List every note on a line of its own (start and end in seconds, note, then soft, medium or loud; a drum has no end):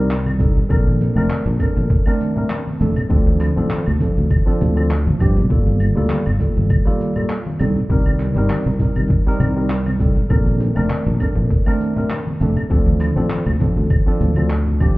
0.00 0.47 C2 loud
0.00 0.12 G3 medium
0.00 0.12 C4 medium
0.00 0.13 D#4 medium
0.00 0.13 A#4 medium
0.11 clap loud
0.11 shaker soft
0.26 muted conga medium
0.26 high conga medium
0.26 claves medium
0.26 shaker soft
0.39 0.57 G3 medium
0.39 0.58 C4 medium
0.39 0.58 D#4 medium
0.39 0.58 A4 medium
0.39 kick loud
0.39 shaker medium
0.57 muted conga medium
0.57 low conga medium
0.57 shaker soft
0.69 1.07 A#1 loud
0.69 1.12 C4 medium
0.69 1.13 D4 medium
0.69 1.12 A4 loud
0.69 1.13 A#4 loud
0.69 kick loud
0.69 claves medium
0.69 shaker soft
0.86 high conga loud
0.86 shaker soft
1.01 muted conga medium
1.01 shaker medium
1.16 1.25 F1 medium
1.16 1.43 A3 loud
1.16 1.43 C4 medium
1.16 1.43 D4 medium
1.16 1.44 A#4 loud
1.16 claves medium
1.16 shaker soft
1.30 clap loud
1.30 muted conga soft
1.30 high conga medium
1.30 shaker soft
1.46 1.55 A#1 loud
1.46 shaker soft
1.60 2.03 C4 medium
1.60 2.03 D4 medium
1.60 2.02 A4 medium
1.60 2.03 A#4 medium
1.60 kick medium
1.60 low conga medium
1.60 claves medium
1.60 shaker medium
1.76 1.86 A#1 medium
1.76 muted conga medium
1.76 high conga medium
1.76 shaker soft
1.90 kick loud
1.90 shaker soft
2.06 2.32 A3 loud
2.06 2.33 C4 medium
2.06 2.33 D4 medium
2.06 2.34 A#4 loud
2.06 muted conga soft
2.06 claves medium
2.06 shaker soft
2.20 high conga medium
2.20 shaker medium
2.36 2.52 A3 medium
2.36 2.53 C4 medium
2.36 2.53 D4 medium
2.36 2.53 A#4 medium
2.36 low conga medium
2.36 shaker soft
2.50 clap loud
2.50 muted conga medium
2.50 claves medium
2.50 shaker soft
2.67 high conga medium
2.80 2.91 F1 medium
2.80 2.98 A3 medium
2.80 2.98 C4 medium
2.80 2.99 D4 medium
2.80 2.99 A4 loud
2.80 muted conga medium
2.80 shaker medium
2.96 low conga medium
2.96 claves medium
2.96 shaker soft
3.09 3.48 D2 loud
3.09 3.52 F3 medium
3.09 3.52 C4 medium
3.09 3.53 D4 medium
3.09 3.53 A4 loud
3.09 kick loud
3.09 shaker soft
3.27 muted conga medium
3.27 high conga medium
3.27 shaker soft
3.40 clap soft
3.40 claves medium
3.40 shaker medium
3.56 3.66 A1 medium
3.56 3.83 F3 medium
3.56 3.83 C4 medium
3.56 3.84 D4 medium
3.56 3.84 A4 loud
3.56 muted conga soft
3.56 shaker soft
3.71 clap loud
3.71 high conga medium
3.71 shaker soft
3.86 3.96 D2 loud
3.86 claves medium
3.86 shaker soft
4.00 4.42 F3 medium
4.00 4.43 C4 medium
4.00 4.43 D4 medium
4.00 4.43 A4 medium
4.00 kick medium
4.00 muted conga medium
4.00 low conga medium
4.00 shaker medium
4.17 4.26 D2 medium
4.17 high conga medium
4.17 shaker soft
4.30 kick loud
4.30 muted conga soft
4.30 claves medium
4.30 shaker soft
4.46 4.72 F3 loud
4.46 4.73 C4 medium
4.46 4.73 D4 medium
4.46 4.73 A4 loud
4.46 shaker soft
4.61 5.06 D2 loud
4.61 high conga medium
4.61 low conga loud
4.61 shaker medium
4.75 4.92 F3 medium
4.75 4.92 C4 medium
4.75 4.93 D4 medium
4.75 4.93 A4 medium
4.75 muted conga medium
4.75 claves medium
4.75 shaker soft
4.91 clap loud
4.91 shaker soft
5.07 5.16 A1 medium
5.07 muted conga soft
5.07 high conga medium
5.07 shaker soft
5.20 5.38 G2 medium
5.20 5.38 F3 medium
5.20 5.38 C4 medium
5.20 5.39 D4 medium
5.20 5.39 G4 loud
5.20 kick loud
5.20 claves medium
5.20 shaker medium
5.37 5.46 C2 medium
5.37 low conga medium
5.37 shaker soft
5.49 5.88 G1 loud
5.49 5.92 G3 medium
5.49 5.92 A#3 medium
5.49 5.93 F4 medium
5.49 5.93 A4 loud
5.49 kick loud
5.49 shaker soft
5.66 muted conga medium
5.66 high conga medium
5.66 shaker soft
5.80 claves medium
5.80 shaker medium
5.95 6.06 D2 medium
5.95 6.23 G3 medium
5.95 6.23 A#3 medium
5.95 6.24 F4 medium
5.95 6.24 A4 loud
5.95 shaker soft
6.10 clap loud
6.10 muted conga medium
6.10 high conga medium
6.10 shaker soft
6.26 6.36 G1 loud
6.26 claves medium
6.26 shaker soft
6.40 6.82 G3 medium
6.40 6.82 A#3 medium
6.40 6.83 F4 medium
6.40 6.83 A4 medium
6.40 kick medium
6.40 muted conga medium
6.40 low conga medium
6.40 shaker medium
6.56 6.66 G1 medium
6.56 high conga loud
6.56 shaker soft
6.70 kick loud
6.70 claves medium
6.70 shaker soft
6.85 7.12 G3 loud
6.85 7.12 A#3 medium
6.85 7.13 F4 medium
6.85 7.13 A4 loud
6.85 muted conga medium
6.85 shaker soft
7.00 high conga medium
7.00 shaker medium
7.16 7.32 G3 medium
7.16 7.32 A#3 medium
7.16 7.33 F4 medium
7.16 7.33 A4 medium
7.16 muted conga soft
7.16 low conga medium
7.16 claves medium
7.16 shaker soft
7.30 clap medium
7.30 shaker soft
7.46 high conga medium
7.59 7.71 C2 medium
7.59 7.78 G3 medium
7.59 7.78 C4 medium
7.59 7.78 D#4 medium
7.59 7.79 A4 medium
7.59 muted conga medium
7.59 claves medium
7.59 shaker medium
7.76 low conga medium
7.76 shaker soft
7.89 8.27 C2 loud
7.89 8.32 G3 loud
7.89 8.32 C4 medium
7.89 8.33 D#4 medium
7.89 8.33 A#4 loud
7.89 kick loud
7.89 muted conga soft
7.89 shaker soft
8.06 high conga medium
8.06 claves medium
8.06 shaker soft
8.20 clap soft
8.20 shaker medium
8.35 8.46 G1 medium
8.35 8.63 G3 medium
8.35 8.63 C4 medium
8.35 8.64 D#4 medium
8.35 8.64 A#4 loud
8.35 muted conga medium
8.35 shaker soft
8.50 clap medium
8.50 high conga medium
8.50 claves medium
8.50 shaker soft
8.66 8.75 C2 loud
8.66 muted conga soft
8.66 shaker soft
8.79 9.22 G3 medium
8.79 9.23 C4 medium
8.79 9.23 D#4 medium
8.79 9.23 A#4 medium
8.79 kick medium
8.79 low conga medium
8.79 shaker medium
8.96 9.06 C2 medium
8.96 high conga medium
8.96 claves medium
8.96 shaker soft
9.08 kick loud
9.08 muted conga medium
9.08 shaker soft
9.26 9.52 G3 loud
9.26 9.53 C4 medium
9.26 9.53 D#4 medium
9.26 9.53 A#4 loud
9.26 shaker soft
9.40 10.07 C2 medium
9.40 muted conga soft
9.40 high conga medium
9.40 low conga medium
9.40 claves medium
9.40 shaker medium
9.56 9.72 G3 medium
9.56 9.72 C4 medium
9.56 9.73 D#4 medium
9.56 9.73 A#4 medium
9.56 shaker soft
9.70 clap loud
9.70 shaker soft
9.86 muted conga medium
9.86 high conga medium
9.86 claves medium
9.86 shaker soft
9.99 10.18 G3 medium
9.99 10.18 C4 medium
9.99 10.18 D#4 medium
9.99 10.19 A4 medium
9.99 kick loud
9.99 shaker medium
10.16 muted conga medium
10.16 low conga medium
10.16 shaker soft
10.29 10.68 A#1 loud
10.29 10.72 C4 medium
10.29 10.73 D4 medium
10.29 10.72 A4 medium
10.29 10.73 A#4 loud
10.29 kick loud
10.29 claves medium
10.29 shaker soft
10.46 high conga medium
10.46 shaker soft
10.60 muted conga medium
10.60 shaker medium
10.75 10.86 F1 medium
10.75 11.03 A3 loud
10.75 11.03 C4 medium
10.75 11.04 D4 medium
10.75 11.04 A#4 loud
10.75 claves medium
10.75 shaker soft
10.90 clap medium
10.90 muted conga medium
10.90 high conga medium
10.90 shaker soft
11.06 11.16 A#1 loud
11.06 shaker soft
11.20 11.63 C4 medium
11.20 11.63 D4 medium
11.20 11.62 A4 medium
11.20 11.63 A#4 medium
11.20 kick medium
11.20 low conga medium
11.20 claves medium
11.20 shaker medium
11.35 11.46 A#1 medium
11.35 muted conga medium
11.35 high conga medium
11.35 shaker soft
11.51 kick loud
11.51 shaker soft
11.66 11.92 A3 loud
11.66 11.93 C4 loud
11.66 11.93 D4 medium
11.66 11.93 A#4 loud
11.66 muted conga soft
11.66 claves medium
11.66 shaker soft
11.80 high conga medium
11.80 shaker medium
11.96 12.12 A3 medium
11.96 12.13 C4 medium
11.96 12.13 D4 medium
11.96 12.13 A#4 medium
11.96 low conga medium
11.96 shaker soft
12.10 clap loud
12.10 muted conga medium
12.10 claves medium
12.10 shaker soft
12.27 high conga medium
12.40 12.51 F1 medium
12.40 12.58 A3 medium
12.40 12.59 C4 medium
12.40 12.59 D4 medium
12.40 12.59 A4 medium
12.40 muted conga soft
12.40 shaker medium
12.56 low conga medium
12.56 claves medium
12.56 shaker soft
12.70 13.08 D2 loud
12.70 13.12 F3 loud
12.70 13.12 C4 medium
12.70 13.13 D4 medium
12.70 13.13 A4 loud
12.70 kick loud
12.70 shaker soft
12.86 muted conga medium
12.86 high conga medium
12.86 shaker soft
13.01 clap soft
13.01 claves medium
13.01 shaker medium
13.16 13.26 A1 medium
13.16 13.43 F3 loud
13.16 13.43 C4 medium
13.16 13.44 D4 medium
13.16 13.44 A4 loud
13.16 muted conga medium
13.16 shaker soft
13.30 clap loud
13.30 high conga medium
13.30 shaker soft
13.46 13.56 D2 loud
13.46 claves medium
13.46 shaker soft
13.60 14.02 F3 medium
13.60 14.03 C4 medium
13.60 14.03 D4 medium
13.60 14.03 A4 medium
13.60 kick medium
13.60 muted conga medium
13.60 low conga medium
13.60 shaker medium
13.76 13.86 D2 medium
13.76 high conga medium
13.76 shaker soft
13.90 kick loud
13.90 muted conga medium
13.90 claves medium
13.90 shaker soft
14.06 14.32 F3 loud
14.06 14.33 C4 medium
14.06 14.33 D4 medium
14.06 14.33 A4 loud
14.06 shaker soft
14.20 14.31 D2 medium
14.20 high conga medium
14.20 low conga loud
14.20 shaker medium
14.36 14.88 D2 medium
14.36 14.53 F3 medium
14.36 14.53 C4 medium
14.36 14.53 D4 medium
14.36 14.54 A4 medium
14.36 muted conga medium
14.36 claves medium
14.36 shaker soft
14.50 clap loud
14.50 shaker soft
14.66 muted conga medium
14.66 high conga medium
14.66 shaker soft
14.80 14.98 F3 medium
14.80 14.98 C4 medium
14.80 14.98 D4 medium
14.80 14.98 G4 loud
14.80 kick loud
14.80 claves medium
14.80 shaker medium